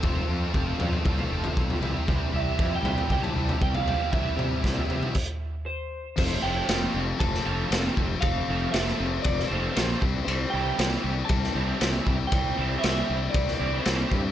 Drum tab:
CC |----------------|----------------|--------x-------|x---------------|
RD |----------------|----------------|----------------|----b---b---b---|
SD |----------------|----------------|----o-----------|----o----o--o---|
T2 |------o---------|------o---------|--o-------------|----------------|
FT |o-----oooo-o-oo-|o-----oooo-o-oo-|o-o--ooo--------|----------------|
BD |o---o---o---o---|o---o---o---o---|o---o---o-------|o-------o-----o-|

CC |----------------|----------------|----------------|
RD |b---b---b---b---|b---b---b---b---|b---b---b---b---|
SD |----oo---o--o---|----oo---o--o---|----o----o--o---|
T2 |----------------|----------------|----------------|
FT |----------------|----------------|----------------|
BD |o-------o-----o-|--------o-----o-|o-------o-----o-|